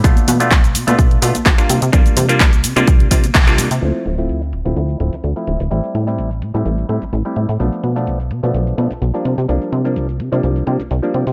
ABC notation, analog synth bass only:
X:1
M:4/4
L:1/16
Q:"Swing 16ths" 1/4=127
K:Dm
V:1 name="Analog synth bass" clef=bass
=B,,, z =B,,2 B,,,2 B,, B,, B,,,2 B,, B,,, B,,, z C, C, | C,, z C,2 C,,2 C, C, C,,2 C,2 C,,2 C, C, | D,, z D,,,2 D,,2 D,,, D,,, D,,2 D,,, z D,, z D,,, D,,, | A,,, z A,,2 A,,,2 A,, A,, A,,,2 A,, A,,, A,,, z A,, A,, |
=B,,, z =B,,2 B,,,2 B,, B,, B,,,2 B,, B,,, B,,, z C, C, | C,, z C,2 C,,2 C, C, C,,2 C, C,, C,, z C, C, |]